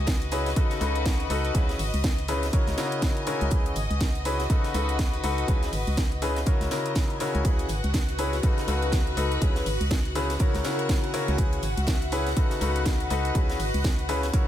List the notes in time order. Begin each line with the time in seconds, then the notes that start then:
Already playing: C#2 F#4 D#5
0.03 B4, kick, snare, closed hi-hat
0.08 snare
0.21 closed hi-hat
0.31 C#4 E4 G#4 B4, closed hi-hat, open hi-hat
0.46 snare, closed hi-hat
0.56 C#3 D#4 F#4 A4 B4, kick, closed hi-hat
0.70 snare, closed hi-hat
0.81 C#2 C#3 D#4 F#4 A4 B4, closed hi-hat, open hi-hat
0.96 closed hi-hat
1.06 kick, snare, closed hi-hat
1.20 closed hi-hat
1.30 C#2 D#4 F#4 A4 B4, closed hi-hat, open hi-hat
1.45 closed hi-hat
1.55 C#2 C#3 C#4 E4 G#4 B4, kick, closed hi-hat
1.69 snare, closed hi-hat
1.79 G#1, open hi-hat
1.94 C#2, closed hi-hat
2.04 kick, snare, closed hi-hat
2.18 closed hi-hat
2.28 C#3 C#4 E4 G#4 B4, closed hi-hat, open hi-hat
2.43 snare, closed hi-hat
2.53 C#3 E4 F#4 A#4 C#5, kick, closed hi-hat
2.67 C#2, snare, closed hi-hat
2.78 C#3 E4 F#4 A#4 C#5, snare, closed hi-hat, open hi-hat
2.92 closed hi-hat
2.98 G#5, closed hi-hat
3.02 kick, snare
3.17 closed hi-hat
3.27 C#3 E4 F#4 A#4 C#5, closed hi-hat, open hi-hat
3.41 C#2, closed hi-hat
3.51 C#2 C#3 E4 F#4 B4, kick, closed hi-hat
3.66 closed hi-hat
3.74 G#1 B4, closed hi-hat, open hi-hat
3.91 C#2, closed hi-hat
4.01 kick, snare, closed hi-hat
4.15 closed hi-hat
4.25 C#4 E4 G#4 B4, closed hi-hat, open hi-hat
4.39 snare, closed hi-hat
4.50 C#3 D#4 F#4 A4 B4, kick, closed hi-hat
4.64 snare, closed hi-hat
4.74 C#2 C#3 D#4 F#4 A4 B4, closed hi-hat, open hi-hat
4.89 closed hi-hat
4.99 kick, snare, closed hi-hat
5.14 closed hi-hat
5.24 C#2 D#4 F#4 A4 B4, closed hi-hat, open hi-hat
5.38 closed hi-hat
5.48 C#2 C#3 C#4 E4 G#4 B4, kick, closed hi-hat
5.63 snare, closed hi-hat
5.73 G#1, open hi-hat
5.87 C#2, closed hi-hat
5.97 kick, snare, closed hi-hat
6.12 closed hi-hat
6.22 C#3 C#4 E4 G#4 B4, closed hi-hat, open hi-hat
6.36 snare, closed hi-hat
6.46 C#3 E4 F#4 A#4 C#5, kick, closed hi-hat
6.61 C#2, snare, closed hi-hat
6.71 C#3 E4 F#4 A#4 C#5, snare, closed hi-hat, open hi-hat
6.86 closed hi-hat
6.92 G#5, kick, snare, closed hi-hat
6.96 snare, closed hi-hat
7.10 closed hi-hat
7.20 C#3 E4 F#4 A#4 C#5, closed hi-hat, open hi-hat
7.35 C#2, closed hi-hat
7.45 C#2 C#3 F#4 G#4 B4 F#5, kick, closed hi-hat
7.59 closed hi-hat
7.69 G#1 B4, closed hi-hat, open hi-hat
7.84 C#2, closed hi-hat
7.94 kick, snare, closed hi-hat
8.09 closed hi-hat
8.19 C#4 E4 G#4 B4, closed hi-hat, open hi-hat
8.33 snare, closed hi-hat
8.43 C#3 D#4 F#4 A4 B4, kick, closed hi-hat
8.58 snare, closed hi-hat
8.68 C#2 C#3 D#4 F#4 A4 B4, closed hi-hat, open hi-hat
8.82 closed hi-hat
8.92 kick, snare, closed hi-hat
9.07 closed hi-hat
9.17 C#2 D#4 F#4 A4 B4, closed hi-hat, open hi-hat
9.32 closed hi-hat
9.41 C#2 C#3 C#4 E4 G#4 B4, kick, closed hi-hat
9.56 snare, closed hi-hat
9.66 G#1, open hi-hat
9.81 C#2, closed hi-hat
9.91 kick, snare, closed hi-hat
10.05 closed hi-hat
10.15 C#3 C#4 E4 G#4 B4, closed hi-hat, open hi-hat
10.30 snare, closed hi-hat
10.39 C#3 E4 F#4 A#4 C#5, kick, closed hi-hat
10.54 C#2, snare, closed hi-hat
10.64 C#3 E4 F#4 A#4 C#5, snare, closed hi-hat, open hi-hat
10.79 closed hi-hat
10.85 G#5
10.89 kick, snare, closed hi-hat
11.04 closed hi-hat
11.14 C#3 E4 F#4 A#4 C#5, closed hi-hat, open hi-hat
11.28 C#2, closed hi-hat
11.38 C#2 C#3 C#4 E4 F#4 G#4 B4, kick, closed hi-hat
11.52 B4, closed hi-hat
11.62 G#1, closed hi-hat, open hi-hat
11.77 C#2, closed hi-hat
11.83 E5, snare, closed hi-hat
11.88 kick, snare, closed hi-hat
12.02 closed hi-hat
12.12 C#4 E4 G#4 B4, closed hi-hat, open hi-hat
12.27 snare, closed hi-hat
12.37 C#3 D#4 F#4 A4 B4, kick, closed hi-hat
12.51 snare, closed hi-hat
12.61 C#2 C#3 D#4 F#4 A4 B4, closed hi-hat, open hi-hat
12.76 closed hi-hat
12.82 D#5, snare, closed hi-hat
12.86 kick, snare, closed hi-hat
13.00 closed hi-hat
13.10 C#2 D#4 F#4 A4 B4, closed hi-hat, open hi-hat
13.25 closed hi-hat
13.35 C#2 C#3 C#4 E4 G#4 B4, kick, closed hi-hat
13.50 snare, closed hi-hat
13.60 G#1, open hi-hat
13.74 C#2, closed hi-hat
13.84 kick, snare, closed hi-hat
13.99 closed hi-hat
14.09 C#3 C#4 E4 G#4 B4, closed hi-hat, open hi-hat
14.23 snare, closed hi-hat
14.33 C#3 C#4 E4 F#4 A#4 C#5, kick, closed hi-hat